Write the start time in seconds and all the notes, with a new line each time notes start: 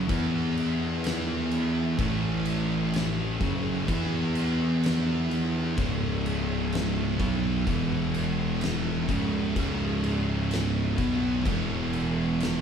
0.08 E2 E3 B3 E4, kick, crash
0.57 crash
1.04 snare, crash
1.51 crash
1.97 A1 A2 E3 A3, kick, crash
2.46 crash
2.94 snare, crash
3.40 F#1 F#2 C#3 F#3, kick, crash
3.87 E2 E3 B3 E4, kick, crash
4.35 crash
4.83 snare, crash
5.31 crash
5.77 C#1 C#2 G#2 C#3, kick, crash
6.26 crash
6.73 snare, crash
7.18 B1 B2 F#3 B3, kick, crash
7.66 E1 E2 B2 E3, kick, crash
8.14 crash
8.61 snare, crash
9.08 C#1 C#2 G#2 C#3, kick, crash
9.55 C#1 C#2 G#2 C#3, kick, crash
10.04 crash
10.51 snare, crash
10.97 B1 B2 F#3 B3, kick, crash
11.45 E1 E2 B2 E3, kick, crash
11.93 crash
12.40 snare, crash